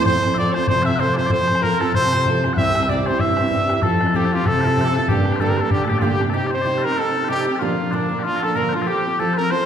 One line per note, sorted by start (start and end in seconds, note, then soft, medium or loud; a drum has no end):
0.02 0.23 F3 medium
0.02 0.23 C4 medium
0.02 0.35 C5 loud
0.02 0.06 D5 medium
0.02 bodhran loud
0.06 0.66 F2 loud
0.06 0.23 F4 medium
0.06 0.21 A4 medium
0.06 0.34 C5 medium
0.22 0.36 C4 soft
0.22 0.37 F4 soft
0.22 0.37 A4 soft
0.22 bodhran medium
0.34 0.55 F3 medium
0.34 0.55 C4 medium
0.34 0.55 F4 medium
0.34 0.54 D5 medium
0.34 0.38 E5 medium
0.34 bodhran medium
0.39 0.53 A4 medium
0.39 0.56 D5 medium
0.54 0.69 C4 soft
0.54 0.69 F4 soft
0.54 0.68 A4 medium
0.54 0.68 C5 loud
0.54 0.64 C5 medium
0.54 bodhran medium
0.64 0.68 D5 medium
0.64 bodhran medium
0.68 1.28 C3 medium
0.68 0.86 F3 medium
0.68 0.87 C4 medium
0.68 0.86 F4 medium
0.68 0.84 A4 medium
0.68 0.83 C5 medium
0.68 0.85 C5 loud
0.83 1.00 A4 medium
0.83 1.01 E5 medium
0.83 0.96 E5 loud
0.83 0.86 F#5 loud
0.83 bodhran medium
0.87 0.99 C4 soft
0.87 1.00 F4 soft
0.96 1.17 F3 medium
0.96 1.00 F#5 medium
0.96 bodhran medium
1.00 1.18 C4 medium
1.00 1.16 F4 medium
1.00 1.14 A4 medium
1.00 1.17 C5 loud
1.00 1.14 C5 medium
1.14 1.29 F4 soft
1.14 1.29 A4 medium
1.14 1.26 C5 medium
1.14 1.17 D5 medium
1.14 bodhran medium
1.18 1.28 C4 soft
1.18 1.31 C5 loud
1.24 1.31 D5 medium
1.24 bodhran soft
1.28 1.91 F2 medium
1.28 1.47 F3 medium
1.28 1.47 C4 medium
1.28 1.47 F4 medium
1.28 1.45 A4 medium
1.28 1.63 C5 medium
1.28 bodhran medium
1.33 1.64 C5 loud
1.46 1.60 C4 soft
1.46 1.61 F4 soft
1.46 1.61 A4 soft
1.46 bodhran medium
1.55 bodhran medium
1.61 1.79 F3 medium
1.61 1.80 C4 medium
1.61 1.80 F4 medium
1.61 1.78 A4 medium
1.61 1.81 A#4 loud
1.61 1.81 A#4 medium
1.61 bodhran medium
1.80 1.94 C4 soft
1.80 1.95 F4 soft
1.80 1.94 A4 medium
1.80 1.95 A4 medium
1.80 bodhran medium
1.94 2.54 C3 medium
1.94 2.12 F3 medium
1.94 2.12 C4 medium
1.94 2.12 F4 medium
1.94 2.11 A4 medium
1.94 2.53 C5 medium
1.94 2.28 C5 loud
1.94 bodhran medium
2.12 2.25 C4 soft
2.12 2.27 F4 soft
2.12 2.26 A4 medium
2.12 bodhran medium
2.25 2.43 F3 medium
2.25 2.44 C4 medium
2.25 2.43 F4 medium
2.25 2.41 A4 medium
2.25 bodhran medium
2.42 2.57 C4 soft
2.42 2.58 F4 medium
2.42 2.57 A4 medium
2.42 bodhran medium
2.51 2.58 F#5 medium
2.51 bodhran soft
2.57 3.17 C2 medium
2.57 2.74 C3 medium
2.57 2.75 G3 medium
2.57 2.75 C4 medium
2.57 2.76 E4 medium
2.57 2.74 G4 medium
2.57 2.89 E5 medium
2.57 2.92 E5 loud
2.57 bodhran medium
2.75 2.90 C4 soft
2.75 2.90 E4 soft
2.75 2.89 G4 soft
2.75 bodhran medium
2.83 bodhran medium
2.89 3.07 C3 medium
2.89 3.07 G3 medium
2.89 3.08 C4 medium
2.89 3.07 E4 medium
2.89 3.06 G4 medium
2.89 3.06 D5 medium
2.89 3.09 D5 medium
2.89 bodhran medium
3.06 3.19 C4 soft
3.06 3.21 E4 soft
3.06 3.20 G4 medium
3.06 3.21 C5 medium
3.06 3.21 C5 loud
3.06 bodhran medium
3.19 3.80 G2 medium
3.19 3.37 G3 medium
3.19 3.38 C4 medium
3.19 3.38 E4 medium
3.19 3.37 G4 medium
3.19 3.82 E5 loud
3.19 3.82 E5 medium
3.19 bodhran medium
3.37 3.52 E4 medium
3.37 3.52 G4 medium
3.37 bodhran medium
3.41 3.52 C4 soft
3.51 3.69 C3 medium
3.51 3.69 G3 medium
3.51 3.70 C4 medium
3.51 3.69 E4 medium
3.51 3.67 G4 medium
3.51 bodhran medium
3.69 3.82 C4 soft
3.69 3.83 E4 medium
3.69 3.83 G4 medium
3.69 bodhran medium
3.77 bodhran soft
3.82 4.43 F2 loud
3.82 4.00 F3 medium
3.82 4.01 C4 medium
3.82 4.00 F4 medium
3.82 4.16 A4 medium
3.82 4.17 A4 medium
3.82 3.98 A4 medium
3.82 bodhran medium
4.01 4.14 C4 soft
4.01 4.15 F4 soft
4.01 bodhran medium
4.06 bodhran medium
4.14 4.32 F3 medium
4.14 4.32 C4 medium
4.14 4.33 F4 medium
4.14 4.35 G4 medium
4.14 4.25 G4 medium
4.14 4.31 A4 medium
4.14 bodhran medium
4.25 4.35 A4 medium
4.32 4.46 C4 soft
4.32 4.49 F4 loud
4.32 4.47 F4 medium
4.32 4.46 G4 medium
4.32 4.46 A4 soft
4.45 5.05 C3 loud
4.45 4.63 F3 medium
4.45 4.64 F4 medium
4.45 4.61 A4 medium
4.45 5.09 A4 loud
4.45 4.62 A4 medium
4.45 bodhran medium
4.61 4.77 A4 medium
4.61 4.67 A#4 medium
4.61 4.64 C5 medium
4.61 bodhran medium
4.65 4.77 C4 soft
4.65 4.78 F4 soft
4.65 4.81 A4 medium
4.77 4.95 F3 medium
4.77 4.96 C4 medium
4.77 4.96 F4 medium
4.77 4.94 A4 medium
4.77 bodhran medium
4.81 4.87 G4 soft
4.81 4.85 C5 soft
4.87 5.08 A4 medium
4.95 5.11 C4 medium
4.95 5.10 F4 medium
4.95 5.09 A4 medium
4.95 bodhran medium
5.08 5.68 G2 medium
5.08 5.27 G2 medium
5.08 5.27 D3 medium
5.08 5.27 G3 medium
5.08 5.27 A#3 medium
5.08 5.28 D4 medium
5.08 5.36 G4 medium
5.08 5.44 G4 medium
5.08 5.26 G4 medium
5.08 bodhran loud
5.25 5.41 D4 soft
5.25 5.41 G4 soft
5.25 bodhran medium
5.29 5.40 G3 soft
5.29 5.41 A#3 soft
5.29 bodhran medium
5.36 5.40 C5 medium
5.36 bodhran medium
5.40 5.58 G2 medium
5.40 5.58 D3 medium
5.40 5.58 G3 medium
5.40 5.58 A#3 medium
5.40 5.57 D4 medium
5.40 5.56 G4 medium
5.40 5.57 A4 medium
5.40 5.51 A4 medium
5.49 5.64 A#4 medium
5.57 5.70 G3 soft
5.57 5.71 A#3 soft
5.57 5.72 D4 medium
5.57 5.71 G4 soft
5.57 5.71 A4 medium
5.57 5.60 C5 medium
5.57 bodhran medium
5.62 5.72 A4 medium
5.71 5.88 D3 loud
5.71 5.89 G3 medium
5.71 5.89 A#3 medium
5.71 5.88 D4 medium
5.71 5.85 G4 medium
5.71 5.86 G4 medium
5.71 bodhran medium
5.84 6.02 G4 soft
5.84 5.92 A4 medium
5.84 5.89 A4 medium
5.84 bodhran medium
5.88 6.01 A2 medium
5.88 6.01 G3 soft
5.88 6.02 A#3 soft
5.88 6.02 D4 medium
5.88 5.98 G4 medium
5.88 6.01 G4 medium
5.98 6.20 G2 medium
5.98 6.18 A#2 medium
5.98 6.20 D3 medium
5.98 6.20 G3 medium
5.98 6.08 F4 medium
5.98 6.29 G4 medium
5.98 6.02 A4 medium
6.02 6.20 A#3 medium
6.02 6.19 D4 medium
6.02 6.19 G4 medium
6.02 6.22 G4 medium
6.02 bodhran medium
6.20 6.33 C3 medium
6.20 6.32 G3 soft
6.20 6.33 A#3 soft
6.20 6.34 D4 medium
6.20 6.33 G4 soft
6.20 bodhran medium
6.28 6.34 A4 medium
6.28 bodhran soft
6.33 6.51 C3 medium
6.33 6.52 G3 medium
6.33 6.52 C4 medium
6.33 6.52 D#4 medium
6.33 6.47 G4 medium
6.33 6.50 G4 medium
6.33 6.51 G4 medium
6.47 6.62 C5 medium
6.47 6.50 D5 medium
6.51 6.64 C4 soft
6.51 6.65 D#4 soft
6.51 6.66 G4 soft
6.51 6.87 C5 medium
6.62 6.83 C3 medium
6.62 6.83 G3 medium
6.62 6.83 C4 medium
6.62 6.78 C5 medium
6.62 6.65 D5 medium
6.66 6.84 D#4 medium
6.66 6.83 G4 medium
6.78 6.83 A4 soft
6.83 6.97 D#4 soft
6.83 6.98 G4 medium
6.83 6.92 A#4 medium
6.83 7.01 A#4 loud
6.87 6.96 C4 soft
6.92 6.96 C5 medium
6.96 7.14 G3 soft
6.96 7.15 C4 medium
6.96 7.15 D#4 medium
6.96 7.13 G4 medium
6.96 7.25 A4 medium
6.96 7.30 A4 loud
7.14 7.29 C4 soft
7.14 7.29 D#4 soft
7.14 7.29 G4 medium
7.25 7.46 C3 medium
7.25 7.41 G4 medium
7.25 7.29 C5 medium
7.29 7.47 G3 medium
7.29 7.47 C4 medium
7.29 7.47 D#4 medium
7.29 7.46 G4 loud
7.29 7.45 G4 medium
7.41 7.56 G4 medium
7.41 7.44 A4 medium
7.47 7.61 C4 soft
7.47 7.61 D#4 soft
7.47 7.61 G4 medium
7.47 7.64 G4 medium
7.56 7.91 F4 medium
7.56 7.59 A4 medium
7.60 7.78 A#2 medium
7.60 7.78 D3 medium
7.60 7.78 F3 medium
7.60 7.78 A#3 medium
7.60 7.77 D4 medium
7.60 7.96 F4 medium
7.60 7.76 A#4 medium
7.78 7.92 F3 soft
7.78 7.92 A#3 soft
7.78 7.92 D4 soft
7.78 7.92 A#4 soft
7.91 8.10 A#2 medium
7.91 8.10 D3 medium
7.91 8.10 F3 medium
7.91 8.10 A#3 medium
7.91 8.19 D4 medium
7.91 8.09 D4 medium
7.91 8.27 D4 medium
7.91 8.08 A#4 medium
8.09 8.23 F3 soft
8.09 8.24 A#3 soft
8.09 8.24 D4 soft
8.09 8.23 A#4 medium
8.19 8.36 F4 medium
8.19 8.23 G4 medium
8.24 8.42 F3 medium
8.24 8.42 A#3 soft
8.24 8.41 D4 medium
8.24 8.46 F4 loud
8.24 8.40 A#4 medium
8.36 8.40 A#4 medium
8.40 8.55 A#3 soft
8.40 8.55 D4 medium
8.40 8.56 A4 medium
8.40 8.58 A4 medium
8.40 8.55 A#4 medium
8.44 8.55 F3 soft
8.54 8.72 A#2 medium
8.54 8.73 D3 medium
8.54 8.73 F3 medium
8.54 8.73 A#3 medium
8.54 8.73 D4 medium
8.54 8.69 A#4 medium
8.54 8.76 A#4 loud
8.54 8.72 A#4 medium
8.69 8.73 C5 medium
8.73 8.85 F3 soft
8.73 8.86 A#3 soft
8.73 8.87 D4 soft
8.73 8.82 F4 medium
8.73 8.90 F4 medium
8.73 8.87 A#4 medium
8.82 8.86 A4 medium
8.86 9.04 F3 medium
8.86 9.04 C4 medium
8.86 9.04 F4 medium
8.86 9.19 G4 medium
8.86 9.22 G4 loud
8.86 9.03 A4 medium
9.04 9.19 C4 soft
9.04 9.19 F4 soft
9.04 9.18 A4 soft
9.19 9.37 F3 medium
9.19 9.37 C4 medium
9.19 9.36 F4 medium
9.19 9.33 A4 medium
9.19 9.37 A4 medium
9.19 9.35 A4 medium
9.34 9.50 F4 medium
9.34 9.50 A4 medium
9.34 9.53 A#4 loud
9.34 9.50 A#4 medium
9.34 9.37 C5 medium
9.39 9.50 C4 soft
9.49 9.66 F3 medium
9.49 9.66 C4 medium
9.49 9.66 F4 medium
9.49 9.66 A4 medium
9.49 9.66 C5 medium
9.49 9.66 C5 loud